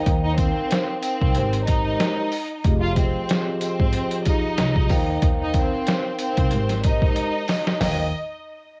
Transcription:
0.06 D#2 D#4 A#4 C5 F5 G5, kick, closed hi-hat
0.24 D#4 D#5
0.37 C4 C5, kick, closed hi-hat, tambourine
0.70 D#4 A#4 C5 F5 G5, snare, closed hi-hat
1.01 C4 C5, closed hi-hat, tambourine
1.22 C2, kick
1.35 G#1 G#3 D#4 G4 A#4 C5, closed hi-hat
1.53 closed hi-hat
1.66 G#3 D#4 G4 A#4 C5 D#5, kick, closed hi-hat, tambourine
2.00 snare, closed hi-hat
2.32 open hi-hat, tambourine
2.64 F1 F3 F4 G4 G#4 D#5, kick, closed hi-hat
2.81 F4 F5
2.96 F3 C4 F4 G4 G#4 C5 D#5, kick, closed hi-hat, tambourine
3.29 snare, closed hi-hat
3.61 F3 C4 F4 G4 G#4 C5 D#5, closed hi-hat, tambourine
3.80 G#1, kick
3.93 closed hi-hat
4.11 closed hi-hat
4.25 F3 D#4 F4 G4 G#4 D#5, kick, closed hi-hat, tambourine
4.58 C2, snare, closed hi-hat
4.76 kick
4.89 D#2 D#4 A#4 C5 F5 G5, kick, open hi-hat, tambourine
5.22 D#2 D#4 A#4 C5 F5 G5, kick, closed hi-hat
5.41 D#4 D#5
5.54 C4, kick, closed hi-hat, tambourine
5.58 C5
5.86 D#4 A#4 C5 F5 G5, snare, closed hi-hat
6.19 C4 C5, closed hi-hat, tambourine
6.37 C2, kick, closed hi-hat
6.51 G#1 G#3 D#4 G4 A#4 C5, closed hi-hat
6.69 snare, closed hi-hat
6.83 G#3 D#4 G4 A#4 C5 D#5, kick, closed hi-hat, tambourine
7.02 kick
7.16 closed hi-hat
7.48 snare, open hi-hat, tambourine
7.67 snare
7.80 D#2 D#4 A#4 C5 D#5 F5 G5, snare, floor tom, open hi-hat, tambourine

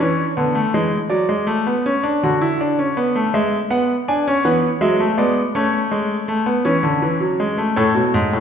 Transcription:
Already playing: C#5
0.00 E3 C#4
0.37 D3 B3
0.55 A3
0.74 E3 G#3
1.10 F#3 D5
1.29 G#3
1.47 A3
1.67 B3
1.86 C#4
2.04 D4
2.23 D3 F#4
2.41 E4
2.61 D4
2.79 C#4
2.97 B3
3.15 A3
3.34 G#3 E5
3.70 B3 F#5
4.08 D4 G#5
4.28 C#4
4.45 E3 B3 F#5
4.81 F#3 G#3 E5
5.00 A3
5.18 G#3 B3 D5
5.55 A3 C#4 C#5
5.92 G#3
6.28 A3
6.46 B3
6.65 E3 C#4
6.83 D3
7.02 E3
7.20 F#3
7.40 G#3
7.58 A3
7.76 A2 A4 C#5
7.95 B2
8.14 G#2
8.33 A2

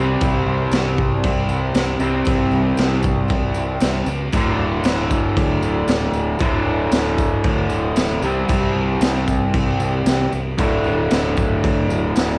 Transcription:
Already playing: C2 C3 G3
0.00 C4
0.21 C2, kick, tambourine, crash
0.46 C2
0.71 C2, snare, tambourine, crash
0.98 kick
1.24 C2, kick, crash
1.48 C2, tambourine
1.74 C2, snare, tambourine, crash
2.00 C2 C3 G3 C4, tambourine
2.25 C2, kick, tambourine, crash
2.51 C2, tambourine
2.77 C2, snare, tambourine, crash
3.02 kick, tambourine
3.28 C2, kick, tambourine, crash
3.54 C2, tambourine
3.80 C2, snare, tambourine, crash
4.06 C#2, tambourine
4.32 D1 D2 A2 D3, kick, tambourine, crash
4.58 D1
4.83 D1, snare, tambourine, crash
5.11 kick, tambourine
5.37 D2, kick, crash
5.61 D1, tambourine
5.87 D1, snare, tambourine, crash
6.12 D1, tambourine
6.39 D1 D2 A2 D3, kick, tambourine, crash
6.65 D1
6.91 D1, snare, tambourine, crash
7.18 kick, tambourine
7.44 D2, kick, crash
7.70 D1, tambourine
7.96 D1, snare, tambourine, crash
8.22 C2 C3 G3 C4, tambourine
8.49 C2, kick, tambourine, crash
8.75 C2
9.00 C2, snare, tambourine, crash
9.28 kick, tambourine
9.54 C2, kick, crash
9.80 C2, tambourine
10.06 C2, snare, tambourine, crash
10.33 C2, tambourine
10.58 D1 D2 A2 D3, kick, tambourine, crash
10.84 D1, tambourine
11.11 D1, snare, tambourine, crash
11.37 kick, tambourine
11.64 D2, kick, tambourine, crash
11.88 D1, tambourine
12.16 D1, snare, tambourine, crash

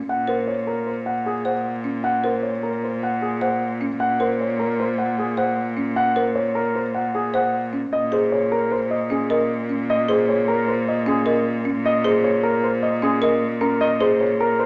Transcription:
Already playing: C#4
0.08 A#2 F#5
0.28 A#4 C5
0.47 C#5
0.67 A#4
0.87 C5
1.06 F#5
1.26 G#4
1.45 C5 F#5
1.84 C#4
2.04 F#5
2.24 A#4 C5
2.43 C#5
2.63 A#4
2.84 C5
3.03 F#5
3.22 G#4
3.41 C5 F#5
3.81 C#4
4.00 F#5
4.20 A#4 C5
4.41 C#5
4.60 A#4
4.80 C5
4.98 F#5
5.18 G#4
5.37 C5 F#5
5.77 C#4
5.96 F#5
6.16 A#4 C5
6.35 C#5
6.55 A#4
6.75 C5
6.95 F#5
7.15 G#4
7.34 C5 F#5
7.73 C#4
7.92 A#2 D#5
8.12 G#4 C5
8.32 C#5
8.52 A#4
8.71 C5
8.91 D#5
9.10 C#4 G#4
9.30 A#4 D#5
9.69 C#4
9.90 D#5
10.09 G#4 C5
10.29 C#5
10.48 A#4
10.68 C5
10.88 D#5
11.06 C#4 G#4
11.26 A#4 D#5
11.65 C#4
11.86 D#5
12.04 G#4 C5
12.24 C#5
12.43 A#4
12.64 C5
12.83 D#5
13.02 C#4 G#4
13.22 A#4 D#5
13.61 C#4 A#4
13.81 D#5
14.01 G#4 C5
14.21 C#5
14.40 A#4
14.59 C5

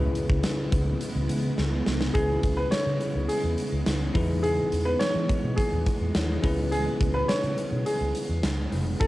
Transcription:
Already playing: C#3 G#3 B3 C#4 E4 G#4 B4
0.15 closed hi-hat
0.30 C#2, kick
0.43 snare, closed hi-hat
0.72 C#2, kick, closed hi-hat
1.01 closed hi-hat
1.15 C#2
1.29 C#3, closed hi-hat
1.58 C#2, snare
1.87 C2, snare
2.01 snare
2.14 C#2 C#3 G#3 B3 C#4 E4 G#4 B4, kick, closed hi-hat
2.43 C#2, kick, closed hi-hat
2.57 B4
2.71 C#5, muted fingered electric bass stroke, snare, closed hi-hat
2.87 C#3
3.01 closed hi-hat
3.15 C#2
3.28 G#4, closed hi-hat
3.44 E2
3.58 closed hi-hat
3.72 C#2
3.86 C#2, snare, closed hi-hat
4.14 E2 E3 D#4 E4 G#4 B4, kick, open hi-hat
4.43 G#4, closed hi-hat
4.72 E2, closed hi-hat
4.85 B4
4.99 C#5, snare, closed hi-hat
5.15 E3
5.29 kick, closed hi-hat
5.44 B2
5.56 G#4, kick, closed hi-hat
5.72 D#2
5.86 kick, closed hi-hat
6.01 E2
6.14 D#2 D#4 E4 G#4 C#5, snare, closed hi-hat
6.42 C#2 C#3 C#4 E4 G#4 B4, kick, open hi-hat
6.72 G#4, closed hi-hat
7.01 C#2, kick, closed hi-hat
7.14 B4
7.28 C#5, muted fingered electric bass stroke, snare, closed hi-hat
7.43 C#3, closed hi-hat
7.58 closed hi-hat
7.72 B2
7.86 G#4, closed hi-hat
8.01 C#2
8.15 closed hi-hat
8.29 E2
8.43 C#2, snare, closed hi-hat
8.72 F1, open hi-hat
9.00 F#1 C#4 E4 F#4 A4, kick, closed hi-hat

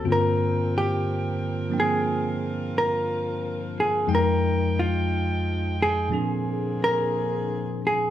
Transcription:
Already playing: C4
0.04 G2 D3 F3 A#3 C4 F4 A#4 G5
0.12 A#4
0.78 G4
1.70 F3 A#3 C4 D4 G5
1.80 G#4
2.04 F4
2.78 A#4
3.80 G#4
4.07 F2 F3 G#3 D#4 G5
4.15 A#4
4.79 F4
5.82 G#4
6.09 A#2 D3 F3 A#3 C4 D4 G#4
6.13 G#4
6.84 A#4
7.87 G#4

